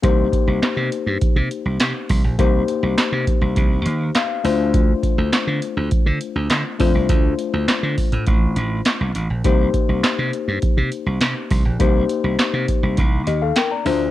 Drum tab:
HH |x-x-x-x-x-x-x-o-|x-x-x-x-x-x-x-o-|x-x-x-x-x-x-x-o-|x-x-x-oxx-x-x-x-|
CP |----x-------x---|----x-------x---|----x-------x---|----x-------x---|
SD |----o-------o---|----o-------o---|----o-------o---|----o-------o---|
BD |o-o-----o-----o-|o-----o-o-------|o-o-----o-----o-|o-----o-o-------|

HH |x-x-x-x-x-x-x-o-|x-x-x-x-x-x-x-o-|
CP |----x-------x---|----x-------x---|
SD |----o-------o---|----o-------o---|
BD |o-o-----o-----o-|o-----o-o-------|